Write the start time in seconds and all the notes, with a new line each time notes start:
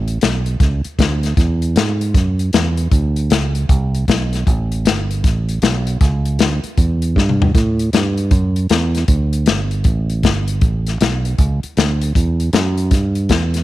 Already playing: A1
0.08 closed hi-hat
0.21 B1, snare, closed hi-hat
0.46 closed hi-hat
0.60 C#2, kick, snare, closed hi-hat
0.84 closed hi-hat
0.99 D2, kick, snare, closed hi-hat
1.23 snare, closed hi-hat
1.37 E2, kick, snare, closed hi-hat
1.62 closed hi-hat
1.76 G#2, snare, closed hi-hat
2.01 closed hi-hat
2.14 F#2, kick, snare, closed hi-hat
2.39 closed hi-hat
2.53 E2, snare, closed hi-hat
2.77 closed hi-hat
2.92 D2, kick, closed hi-hat
3.16 closed hi-hat
3.30 C#2, snare, closed hi-hat
3.55 closed hi-hat
3.69 C2, kick, closed hi-hat
3.95 closed hi-hat
4.08 B1, kick, snare, closed hi-hat
4.33 snare, closed hi-hat
4.47 A1, kick, closed hi-hat
4.72 closed hi-hat
4.85 G1, snare, closed hi-hat
5.11 closed hi-hat
5.24 A1, kick, snare, closed hi-hat
5.49 closed hi-hat
5.62 B1, snare, closed hi-hat
5.87 closed hi-hat
6.01 C#2, kick, snare, closed hi-hat
6.25 closed hi-hat
6.39 D2, snare, closed hi-hat
6.64 closed hi-hat
6.77 E2, kick, closed hi-hat
7.02 closed hi-hat
7.16 G2, kick, snare
7.29 mid tom
7.42 floor tom
7.55 A2, kick, snare, closed hi-hat
7.79 closed hi-hat
7.93 G2, snare, closed hi-hat
8.18 closed hi-hat
8.31 F#2, kick, closed hi-hat
8.56 closed hi-hat
8.69 E2, snare, closed hi-hat
8.95 snare, closed hi-hat
9.08 D2, kick, closed hi-hat
9.33 closed hi-hat
9.46 G1, snare, closed hi-hat
9.71 closed hi-hat
9.84 A1, kick, closed hi-hat
10.10 closed hi-hat
10.23 G1, kick, snare, closed hi-hat
10.48 closed hi-hat
10.61 A1, kick, closed hi-hat
10.87 snare, closed hi-hat
11.01 B1, snare, closed hi-hat
11.25 closed hi-hat
11.38 C#2, kick, closed hi-hat
11.63 muted fingered electric bass stroke, closed hi-hat
11.77 D2, snare, closed hi-hat
12.02 closed hi-hat
12.15 E2, kick, closed hi-hat
12.40 closed hi-hat
12.53 F#2, snare, closed hi-hat
12.78 closed hi-hat
12.91 G2, kick, snare, closed hi-hat
13.15 closed hi-hat
13.29 E2, kick, snare, closed hi-hat
13.54 snare, closed hi-hat